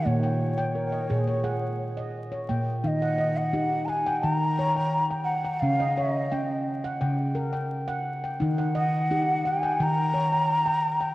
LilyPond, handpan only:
<<
  \new Staff \with { instrumentName = "Handpan" } { \time 4/4 \key bes \phrygian \tempo 4 = 86 << { g'16 g''8. bes'16 ees''8 des''16 ges''8. r8 des''16 g''8~ | g''16 ges''16 ees''8 g'8 ges''8 g''8. g''8. r16 g''16~ | g''16 ees''16 des''8 g''8. r16 g''8. g''8. r16 g''16~ | g''16 ges''16 ees''8 g'8 ges''8 g''8. g''8. r16 g''16 | } \\ { bes8 r16 g''8 r16 aes'8 aes'8 r16 ees''8 r16 bes8 | ees'8 r8 ees'8 r16 g''8 r16 des''8 r16 g''8 r16 | des'8 r8 des'8 r16 fis''8 r16 bes'8 r16 fis''8 r16 | ees'8 r8 ees'8 r16 g''8 r16 des''8 r16 g''8 r16 | } >> }
  \new Staff \with { instrumentName = "Handpan" } { \clef bass \time 4/4 \key bes \phrygian bes,4. bes,2 bes,16 r16 | ees2 ees2 | des2 des2 | ees2 ees2 | }
>>